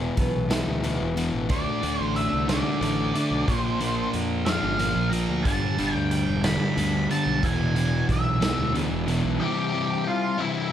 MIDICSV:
0, 0, Header, 1, 6, 480
1, 0, Start_track
1, 0, Tempo, 658617
1, 1090, Time_signature, 6, 3, 24, 8
1, 7815, End_track
2, 0, Start_track
2, 0, Title_t, "Lead electric guitar"
2, 0, Program_c, 0, 29
2, 1097, Note_on_c, 0, 74, 93
2, 1469, Note_off_c, 0, 74, 0
2, 1469, Note_on_c, 0, 72, 93
2, 1572, Note_off_c, 0, 72, 0
2, 1574, Note_on_c, 0, 76, 106
2, 1797, Note_off_c, 0, 76, 0
2, 1817, Note_on_c, 0, 74, 89
2, 2589, Note_off_c, 0, 74, 0
2, 2589, Note_on_c, 0, 72, 89
2, 2987, Note_off_c, 0, 72, 0
2, 3245, Note_on_c, 0, 77, 83
2, 3700, Note_off_c, 0, 77, 0
2, 3716, Note_on_c, 0, 82, 98
2, 3955, Note_on_c, 0, 81, 101
2, 3973, Note_off_c, 0, 82, 0
2, 4334, Note_off_c, 0, 81, 0
2, 4334, Note_on_c, 0, 79, 101
2, 4452, Note_off_c, 0, 79, 0
2, 4455, Note_on_c, 0, 79, 93
2, 4696, Note_on_c, 0, 83, 99
2, 4701, Note_off_c, 0, 79, 0
2, 5145, Note_off_c, 0, 83, 0
2, 5182, Note_on_c, 0, 81, 101
2, 5425, Note_off_c, 0, 81, 0
2, 5430, Note_on_c, 0, 80, 87
2, 5872, Note_off_c, 0, 80, 0
2, 5917, Note_on_c, 0, 76, 77
2, 6355, Note_off_c, 0, 76, 0
2, 6855, Note_on_c, 0, 79, 90
2, 6863, Note_on_c, 0, 67, 80
2, 7306, Note_off_c, 0, 67, 0
2, 7344, Note_on_c, 0, 65, 76
2, 7345, Note_off_c, 0, 79, 0
2, 7349, Note_on_c, 0, 77, 63
2, 7560, Note_off_c, 0, 65, 0
2, 7579, Note_off_c, 0, 77, 0
2, 7582, Note_on_c, 0, 76, 93
2, 7586, Note_on_c, 0, 64, 69
2, 7800, Note_off_c, 0, 64, 0
2, 7815, Note_off_c, 0, 76, 0
2, 7815, End_track
3, 0, Start_track
3, 0, Title_t, "Steel-string acoustic guitar"
3, 0, Program_c, 1, 25
3, 0, Note_on_c, 1, 40, 75
3, 0, Note_on_c, 1, 52, 63
3, 127, Note_on_c, 1, 59, 68
3, 372, Note_on_c, 1, 64, 74
3, 605, Note_off_c, 1, 52, 0
3, 614, Note_on_c, 1, 52, 68
3, 847, Note_off_c, 1, 59, 0
3, 850, Note_off_c, 1, 40, 0
3, 856, Note_on_c, 1, 59, 66
3, 1092, Note_off_c, 1, 52, 0
3, 1092, Note_off_c, 1, 64, 0
3, 1093, Note_off_c, 1, 59, 0
3, 7815, End_track
4, 0, Start_track
4, 0, Title_t, "Overdriven electric guitar"
4, 0, Program_c, 2, 29
4, 0, Note_on_c, 2, 40, 92
4, 0, Note_on_c, 2, 47, 97
4, 0, Note_on_c, 2, 52, 94
4, 347, Note_off_c, 2, 40, 0
4, 355, Note_off_c, 2, 47, 0
4, 356, Note_off_c, 2, 52, 0
4, 356, Note_on_c, 2, 40, 84
4, 364, Note_on_c, 2, 47, 103
4, 365, Note_on_c, 2, 52, 109
4, 594, Note_off_c, 2, 40, 0
4, 600, Note_off_c, 2, 47, 0
4, 601, Note_off_c, 2, 52, 0
4, 602, Note_on_c, 2, 40, 83
4, 609, Note_on_c, 2, 47, 81
4, 610, Note_on_c, 2, 52, 83
4, 837, Note_off_c, 2, 40, 0
4, 843, Note_off_c, 2, 47, 0
4, 846, Note_off_c, 2, 52, 0
4, 846, Note_on_c, 2, 40, 86
4, 852, Note_on_c, 2, 47, 83
4, 855, Note_on_c, 2, 52, 90
4, 1074, Note_off_c, 2, 40, 0
4, 1077, Note_off_c, 2, 47, 0
4, 1078, Note_off_c, 2, 52, 0
4, 1085, Note_on_c, 2, 50, 103
4, 1087, Note_on_c, 2, 57, 100
4, 1092, Note_on_c, 2, 62, 98
4, 1317, Note_off_c, 2, 50, 0
4, 1320, Note_off_c, 2, 57, 0
4, 1325, Note_on_c, 2, 50, 91
4, 1329, Note_on_c, 2, 57, 85
4, 1332, Note_off_c, 2, 62, 0
4, 1335, Note_on_c, 2, 62, 90
4, 1799, Note_off_c, 2, 50, 0
4, 1802, Note_off_c, 2, 57, 0
4, 1808, Note_on_c, 2, 50, 91
4, 1811, Note_on_c, 2, 57, 97
4, 1813, Note_off_c, 2, 62, 0
4, 1815, Note_on_c, 2, 62, 103
4, 2035, Note_off_c, 2, 50, 0
4, 2040, Note_off_c, 2, 57, 0
4, 2044, Note_on_c, 2, 50, 73
4, 2048, Note_off_c, 2, 62, 0
4, 2049, Note_on_c, 2, 57, 86
4, 2051, Note_on_c, 2, 62, 87
4, 2282, Note_off_c, 2, 50, 0
4, 2285, Note_off_c, 2, 57, 0
4, 2290, Note_on_c, 2, 50, 87
4, 2294, Note_on_c, 2, 57, 91
4, 2296, Note_off_c, 2, 62, 0
4, 2299, Note_on_c, 2, 62, 108
4, 2517, Note_off_c, 2, 50, 0
4, 2519, Note_off_c, 2, 57, 0
4, 2528, Note_on_c, 2, 46, 102
4, 2536, Note_on_c, 2, 53, 109
4, 2538, Note_off_c, 2, 62, 0
4, 2540, Note_on_c, 2, 58, 114
4, 2759, Note_off_c, 2, 46, 0
4, 2764, Note_off_c, 2, 53, 0
4, 2768, Note_on_c, 2, 46, 86
4, 2769, Note_off_c, 2, 58, 0
4, 2773, Note_on_c, 2, 53, 101
4, 2778, Note_on_c, 2, 58, 100
4, 3241, Note_off_c, 2, 46, 0
4, 3245, Note_off_c, 2, 53, 0
4, 3250, Note_on_c, 2, 46, 108
4, 3252, Note_off_c, 2, 58, 0
4, 3254, Note_on_c, 2, 53, 108
4, 3261, Note_on_c, 2, 58, 102
4, 3477, Note_off_c, 2, 46, 0
4, 3482, Note_off_c, 2, 53, 0
4, 3486, Note_off_c, 2, 58, 0
4, 3486, Note_on_c, 2, 46, 83
4, 3491, Note_on_c, 2, 53, 89
4, 3495, Note_on_c, 2, 58, 88
4, 3716, Note_off_c, 2, 46, 0
4, 3724, Note_off_c, 2, 53, 0
4, 3725, Note_on_c, 2, 46, 96
4, 3726, Note_off_c, 2, 58, 0
4, 3733, Note_on_c, 2, 53, 93
4, 3734, Note_on_c, 2, 58, 94
4, 3955, Note_off_c, 2, 46, 0
4, 3959, Note_off_c, 2, 53, 0
4, 3960, Note_off_c, 2, 58, 0
4, 3968, Note_on_c, 2, 43, 104
4, 3972, Note_on_c, 2, 50, 92
4, 3977, Note_on_c, 2, 55, 114
4, 4198, Note_off_c, 2, 43, 0
4, 4205, Note_off_c, 2, 50, 0
4, 4207, Note_off_c, 2, 55, 0
4, 4207, Note_on_c, 2, 43, 89
4, 4214, Note_on_c, 2, 50, 84
4, 4216, Note_on_c, 2, 55, 98
4, 4685, Note_off_c, 2, 43, 0
4, 4688, Note_off_c, 2, 50, 0
4, 4692, Note_off_c, 2, 55, 0
4, 4693, Note_on_c, 2, 43, 92
4, 4697, Note_on_c, 2, 50, 94
4, 4701, Note_on_c, 2, 55, 110
4, 4919, Note_off_c, 2, 43, 0
4, 4924, Note_off_c, 2, 50, 0
4, 4927, Note_on_c, 2, 43, 80
4, 4928, Note_off_c, 2, 55, 0
4, 4932, Note_on_c, 2, 50, 78
4, 4937, Note_on_c, 2, 55, 92
4, 5159, Note_off_c, 2, 43, 0
4, 5163, Note_off_c, 2, 50, 0
4, 5167, Note_off_c, 2, 55, 0
4, 5168, Note_on_c, 2, 43, 77
4, 5171, Note_on_c, 2, 50, 96
4, 5176, Note_on_c, 2, 55, 102
4, 5396, Note_off_c, 2, 43, 0
4, 5398, Note_off_c, 2, 50, 0
4, 5400, Note_off_c, 2, 55, 0
4, 5413, Note_on_c, 2, 40, 103
4, 5416, Note_on_c, 2, 47, 108
4, 5420, Note_on_c, 2, 52, 120
4, 5639, Note_off_c, 2, 40, 0
4, 5642, Note_off_c, 2, 47, 0
4, 5646, Note_off_c, 2, 52, 0
4, 5648, Note_on_c, 2, 40, 97
4, 5651, Note_on_c, 2, 47, 93
4, 5655, Note_on_c, 2, 52, 99
4, 6115, Note_off_c, 2, 40, 0
4, 6121, Note_off_c, 2, 47, 0
4, 6124, Note_on_c, 2, 40, 101
4, 6127, Note_off_c, 2, 52, 0
4, 6130, Note_on_c, 2, 47, 106
4, 6135, Note_on_c, 2, 52, 107
4, 6361, Note_off_c, 2, 40, 0
4, 6366, Note_off_c, 2, 47, 0
4, 6369, Note_on_c, 2, 40, 86
4, 6370, Note_off_c, 2, 52, 0
4, 6375, Note_on_c, 2, 47, 87
4, 6378, Note_on_c, 2, 52, 85
4, 6601, Note_off_c, 2, 40, 0
4, 6606, Note_off_c, 2, 47, 0
4, 6610, Note_on_c, 2, 40, 96
4, 6611, Note_off_c, 2, 52, 0
4, 6615, Note_on_c, 2, 47, 88
4, 6620, Note_on_c, 2, 52, 87
4, 6835, Note_off_c, 2, 40, 0
4, 6838, Note_off_c, 2, 47, 0
4, 6840, Note_off_c, 2, 52, 0
4, 6844, Note_on_c, 2, 48, 105
4, 6852, Note_on_c, 2, 52, 101
4, 6856, Note_on_c, 2, 55, 108
4, 6859, Note_on_c, 2, 60, 97
4, 6865, Note_on_c, 2, 64, 112
4, 7078, Note_off_c, 2, 64, 0
4, 7087, Note_on_c, 2, 64, 87
4, 7094, Note_off_c, 2, 60, 0
4, 7097, Note_off_c, 2, 55, 0
4, 7097, Note_on_c, 2, 60, 72
4, 7106, Note_on_c, 2, 55, 65
4, 7326, Note_off_c, 2, 48, 0
4, 7330, Note_off_c, 2, 52, 0
4, 7556, Note_off_c, 2, 64, 0
4, 7565, Note_on_c, 2, 64, 97
4, 7566, Note_off_c, 2, 60, 0
4, 7569, Note_off_c, 2, 55, 0
4, 7575, Note_on_c, 2, 60, 89
4, 7578, Note_on_c, 2, 55, 91
4, 7583, Note_on_c, 2, 52, 83
4, 7585, Note_on_c, 2, 48, 78
4, 7795, Note_off_c, 2, 52, 0
4, 7804, Note_off_c, 2, 55, 0
4, 7808, Note_off_c, 2, 60, 0
4, 7815, Note_off_c, 2, 48, 0
4, 7815, Note_off_c, 2, 64, 0
4, 7815, End_track
5, 0, Start_track
5, 0, Title_t, "Fingered electric bass"
5, 0, Program_c, 3, 33
5, 0, Note_on_c, 3, 28, 102
5, 74, Note_off_c, 3, 28, 0
5, 126, Note_on_c, 3, 35, 92
5, 448, Note_off_c, 3, 35, 0
5, 490, Note_on_c, 3, 38, 78
5, 704, Note_off_c, 3, 38, 0
5, 733, Note_on_c, 3, 28, 81
5, 945, Note_off_c, 3, 28, 0
5, 969, Note_on_c, 3, 33, 69
5, 1076, Note_off_c, 3, 33, 0
5, 1093, Note_on_c, 3, 38, 97
5, 1199, Note_off_c, 3, 38, 0
5, 1334, Note_on_c, 3, 38, 103
5, 1440, Note_off_c, 3, 38, 0
5, 1450, Note_on_c, 3, 33, 83
5, 1664, Note_off_c, 3, 33, 0
5, 1696, Note_on_c, 3, 36, 85
5, 1908, Note_off_c, 3, 36, 0
5, 2048, Note_on_c, 3, 33, 100
5, 2263, Note_off_c, 3, 33, 0
5, 2411, Note_on_c, 3, 35, 82
5, 2518, Note_off_c, 3, 35, 0
5, 2536, Note_on_c, 3, 34, 116
5, 2962, Note_off_c, 3, 34, 0
5, 3016, Note_on_c, 3, 41, 97
5, 3335, Note_off_c, 3, 41, 0
5, 3371, Note_on_c, 3, 31, 89
5, 3585, Note_off_c, 3, 31, 0
5, 3612, Note_on_c, 3, 34, 89
5, 3826, Note_off_c, 3, 34, 0
5, 3852, Note_on_c, 3, 38, 73
5, 3959, Note_off_c, 3, 38, 0
5, 3972, Note_on_c, 3, 31, 99
5, 4080, Note_off_c, 3, 31, 0
5, 4218, Note_on_c, 3, 31, 87
5, 4323, Note_off_c, 3, 31, 0
5, 4335, Note_on_c, 3, 38, 90
5, 4548, Note_off_c, 3, 38, 0
5, 4575, Note_on_c, 3, 28, 78
5, 4788, Note_off_c, 3, 28, 0
5, 4934, Note_on_c, 3, 38, 97
5, 5147, Note_off_c, 3, 38, 0
5, 5290, Note_on_c, 3, 35, 77
5, 5398, Note_off_c, 3, 35, 0
5, 5414, Note_on_c, 3, 28, 124
5, 5840, Note_off_c, 3, 28, 0
5, 5898, Note_on_c, 3, 35, 86
5, 6215, Note_off_c, 3, 35, 0
5, 6254, Note_on_c, 3, 38, 81
5, 6466, Note_off_c, 3, 38, 0
5, 6494, Note_on_c, 3, 28, 83
5, 6706, Note_off_c, 3, 28, 0
5, 6731, Note_on_c, 3, 35, 80
5, 6837, Note_off_c, 3, 35, 0
5, 7815, End_track
6, 0, Start_track
6, 0, Title_t, "Drums"
6, 125, Note_on_c, 9, 42, 63
6, 128, Note_on_c, 9, 36, 74
6, 198, Note_off_c, 9, 42, 0
6, 201, Note_off_c, 9, 36, 0
6, 368, Note_on_c, 9, 42, 105
6, 371, Note_on_c, 9, 38, 116
6, 441, Note_off_c, 9, 42, 0
6, 443, Note_off_c, 9, 38, 0
6, 609, Note_on_c, 9, 42, 67
6, 682, Note_off_c, 9, 42, 0
6, 852, Note_on_c, 9, 42, 68
6, 925, Note_off_c, 9, 42, 0
6, 1088, Note_on_c, 9, 42, 81
6, 1092, Note_on_c, 9, 36, 103
6, 1161, Note_off_c, 9, 42, 0
6, 1165, Note_off_c, 9, 36, 0
6, 1334, Note_on_c, 9, 42, 75
6, 1407, Note_off_c, 9, 42, 0
6, 1574, Note_on_c, 9, 42, 70
6, 1647, Note_off_c, 9, 42, 0
6, 1815, Note_on_c, 9, 42, 102
6, 1817, Note_on_c, 9, 38, 102
6, 1888, Note_off_c, 9, 42, 0
6, 1890, Note_off_c, 9, 38, 0
6, 2058, Note_on_c, 9, 42, 75
6, 2131, Note_off_c, 9, 42, 0
6, 2299, Note_on_c, 9, 42, 66
6, 2372, Note_off_c, 9, 42, 0
6, 2537, Note_on_c, 9, 36, 94
6, 2538, Note_on_c, 9, 42, 87
6, 2609, Note_off_c, 9, 36, 0
6, 2611, Note_off_c, 9, 42, 0
6, 2774, Note_on_c, 9, 42, 78
6, 2847, Note_off_c, 9, 42, 0
6, 3013, Note_on_c, 9, 42, 63
6, 3086, Note_off_c, 9, 42, 0
6, 3252, Note_on_c, 9, 42, 88
6, 3255, Note_on_c, 9, 38, 106
6, 3325, Note_off_c, 9, 42, 0
6, 3328, Note_off_c, 9, 38, 0
6, 3493, Note_on_c, 9, 42, 73
6, 3566, Note_off_c, 9, 42, 0
6, 3736, Note_on_c, 9, 42, 66
6, 3809, Note_off_c, 9, 42, 0
6, 3974, Note_on_c, 9, 42, 92
6, 3975, Note_on_c, 9, 36, 106
6, 4047, Note_off_c, 9, 42, 0
6, 4048, Note_off_c, 9, 36, 0
6, 4216, Note_on_c, 9, 42, 70
6, 4289, Note_off_c, 9, 42, 0
6, 4454, Note_on_c, 9, 42, 68
6, 4527, Note_off_c, 9, 42, 0
6, 4693, Note_on_c, 9, 42, 103
6, 4695, Note_on_c, 9, 38, 109
6, 4765, Note_off_c, 9, 42, 0
6, 4768, Note_off_c, 9, 38, 0
6, 4939, Note_on_c, 9, 42, 72
6, 5012, Note_off_c, 9, 42, 0
6, 5179, Note_on_c, 9, 42, 72
6, 5252, Note_off_c, 9, 42, 0
6, 5416, Note_on_c, 9, 36, 111
6, 5417, Note_on_c, 9, 42, 84
6, 5489, Note_off_c, 9, 36, 0
6, 5490, Note_off_c, 9, 42, 0
6, 5657, Note_on_c, 9, 42, 77
6, 5729, Note_off_c, 9, 42, 0
6, 5896, Note_on_c, 9, 36, 84
6, 5899, Note_on_c, 9, 42, 72
6, 5969, Note_off_c, 9, 36, 0
6, 5972, Note_off_c, 9, 42, 0
6, 6138, Note_on_c, 9, 42, 102
6, 6140, Note_on_c, 9, 38, 121
6, 6211, Note_off_c, 9, 42, 0
6, 6213, Note_off_c, 9, 38, 0
6, 6380, Note_on_c, 9, 42, 77
6, 6453, Note_off_c, 9, 42, 0
6, 6618, Note_on_c, 9, 42, 73
6, 6691, Note_off_c, 9, 42, 0
6, 7815, End_track
0, 0, End_of_file